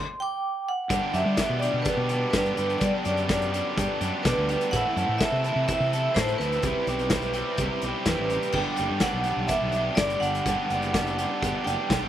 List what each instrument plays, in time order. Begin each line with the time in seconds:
Already playing: vibraphone C6
0.20 vibraphone G5 D6
0.69 vibraphone F#5
0.90 fingered electric bass G2, overdriven electric guitar G2 D3 G3 B3 D4 G4, kick, closed hi-hat
1.13 fingered electric bass F#2, overdriven electric guitar B3 D4 G4, vibraphone E5, closed hi-hat
1.18 overdriven electric guitar G3
1.25 fingered electric bass G3
1.37 overdriven electric guitar G3 B3 D4, kick, snare, closed hi-hat
1.42 overdriven electric guitar G4
1.49 fingered electric bass B2
1.59 overdriven electric guitar B3 D4 G4, vibraphone D5, closed hi-hat
1.64 overdriven electric guitar G2 D3 G3
1.73 fingered electric bass B2
1.82 vibraphone B4, kick, closed hi-hat
1.86 overdriven electric guitar G3 B3 D4 G4
1.97 fingered electric bass B2
2.09 overdriven electric guitar D4 G4, closed hi-hat
2.14 overdriven electric guitar G3 B3
2.30 fingered electric bass G2, overdriven electric guitar G2, vibraphone B4, kick, snare, closed hi-hat
2.35 overdriven electric guitar D3 G3 B3 D4 G4
2.45 closed hi-hat
2.57 fingered electric bass G2, overdriven electric guitar G3 B3 D4 G4, closed hi-hat
2.70 closed hi-hat
2.78 overdriven electric guitar G2 D3 G3, fingered electric bass G3, vibraphone D5, kick, closed hi-hat
2.83 overdriven electric guitar B3 D4 G4
3.04 fingered electric bass F#2, overdriven electric guitar D4 G4, vibraphone D5, closed hi-hat
3.09 overdriven electric guitar G3 B3
3.17 closed hi-hat
3.29 overdriven electric guitar G3 B3 D4 G4, kick, snare, closed hi-hat
3.42 closed hi-hat
3.53 overdriven electric guitar G2 D3 G3 B3 D4 G4, closed hi-hat
3.77 fingered electric bass G2, overdriven electric guitar G3 B3 D4 G4, kick, closed hi-hat
4.01 fingered electric bass F#2, overdriven electric guitar B3 D4 G4, closed hi-hat
4.05 overdriven electric guitar G3
4.23 overdriven electric guitar G2 D3 G3 B3 D4, fingered electric bass B2, vibraphone B4, kick, snare, closed hi-hat
4.28 overdriven electric guitar G4
4.37 fingered electric bass D2
4.49 overdriven electric guitar B3 D4 G4, closed hi-hat
4.53 overdriven electric guitar G3
4.61 closed hi-hat
4.71 overdriven electric guitar A2 E3 C4, fingered electric bass A2, vibraphone F#5, kick, closed hi-hat
4.76 overdriven electric guitar E4 A4
4.96 fingered electric bass F#2, overdriven electric guitar E4 A4, closed hi-hat
5.02 overdriven electric guitar C4
5.09 fingered electric bass A2
5.18 overdriven electric guitar E3, vibraphone E5, kick, snare, closed hi-hat
5.23 overdriven electric guitar C4 E4 A4
5.32 fingered electric bass C3
5.44 overdriven electric guitar E3 C4 E4 A4, closed hi-hat
5.49 overdriven electric guitar A2
5.56 fingered electric bass C3
5.68 overdriven electric guitar E3 C4, vibraphone E5, kick, closed hi-hat
5.72 overdriven electric guitar E4 A4
5.80 fingered electric bass C3
5.93 overdriven electric guitar C4 E4 A4, closed hi-hat
6.15 fingered electric bass A2, overdriven electric guitar A2, vibraphone C5, kick, snare, closed hi-hat
6.19 overdriven electric guitar E3 C4 E4 A4
6.28 closed hi-hat
6.38 fingered electric bass D2, overdriven electric guitar A4, vibraphone B4, closed hi-hat
6.44 overdriven electric guitar C4 E4
6.52 closed hi-hat
6.62 fingered electric bass C2, overdriven electric guitar C3 G3 C4, kick, closed hi-hat
6.67 overdriven electric guitar E4 G4
6.87 fingered electric bass B1, overdriven electric guitar C4 E4 G4, closed hi-hat
6.99 closed hi-hat
7.10 overdriven electric guitar G3 C4 E4, kick, snare, closed hi-hat
7.14 overdriven electric guitar G4
7.22 closed hi-hat
7.33 overdriven electric guitar C3 G3 C4 E4 G4, closed hi-hat
7.58 fingered electric bass C2, overdriven electric guitar G3 C4, kick, closed hi-hat
7.62 overdriven electric guitar E4 G4
7.82 fingered electric bass B1, overdriven electric guitar E4 G4, closed hi-hat
7.87 overdriven electric guitar C4
8.05 fingered electric bass E2, overdriven electric guitar C3 G3 C4 E4, vibraphone B4, kick, snare, closed hi-hat
8.11 overdriven electric guitar G4
8.19 fingered electric bass A1
8.30 overdriven electric guitar E4 G4, closed hi-hat
8.34 overdriven electric guitar C4
8.42 closed hi-hat
8.52 fingered electric bass G1, overdriven electric guitar G2 D3 G3 B3, vibraphone G5, kick, crash
8.57 overdriven electric guitar D4 G4
8.76 fingered electric bass F#1, overdriven electric guitar D4 G4, closed hi-hat
8.81 overdriven electric guitar G3 B3
8.90 fingered electric bass G2
9.00 overdriven electric guitar G3 B3 D4, vibraphone F#5, kick, snare, closed hi-hat
9.04 overdriven electric guitar G4
9.13 fingered electric bass B1
9.24 overdriven electric guitar B3 D4 G4, closed hi-hat
9.28 overdriven electric guitar G2 D3 G3
9.37 fingered electric bass B1
9.48 overdriven electric guitar G3 B3 D4, vibraphone E5, kick, closed hi-hat
9.52 overdriven electric guitar G4
9.62 fingered electric bass B1
9.72 overdriven electric guitar D4 G4, closed hi-hat
9.76 overdriven electric guitar G3 B3
9.95 fingered electric bass G1, overdriven electric guitar G2 D3 G3 B3, vibraphone D5, kick, snare, closed hi-hat
10.00 overdriven electric guitar D4 G4
10.10 closed hi-hat
10.20 fingered electric bass G1, overdriven electric guitar G3 B3 D4 G4, vibraphone F#5, closed hi-hat
10.35 closed hi-hat
10.45 overdriven electric guitar G2 D3 G3 B3 D4 G4, fingered electric bass G2, kick, closed hi-hat
10.70 fingered electric bass F#1, overdriven electric guitar B3 D4 G4, closed hi-hat
10.75 overdriven electric guitar G3
10.82 closed hi-hat
10.94 overdriven electric guitar G3 B3 D4, kick, snare, closed hi-hat
10.98 overdriven electric guitar G4
11.07 closed hi-hat
11.18 overdriven electric guitar G2 D3 G3 B3 D4 G4, closed hi-hat
11.42 fingered electric bass G1, overdriven electric guitar G3 B3 D4 G4, kick, closed hi-hat
11.64 fingered electric bass F#1, overdriven electric guitar G3 B3 D4 G4, vibraphone G5, closed hi-hat
11.88 fingered electric bass B1, overdriven electric guitar G2 D3 G3 B3 D4, kick, snare, closed hi-hat
11.92 overdriven electric guitar G4
12.03 fingered electric bass G1